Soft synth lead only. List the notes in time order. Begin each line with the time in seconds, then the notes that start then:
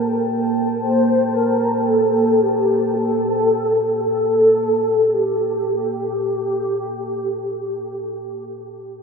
Already playing: A#4
0.81 C5
1.34 A#4
1.87 A4
2.40 G4
2.95 A4
4.03 A4
5.13 G4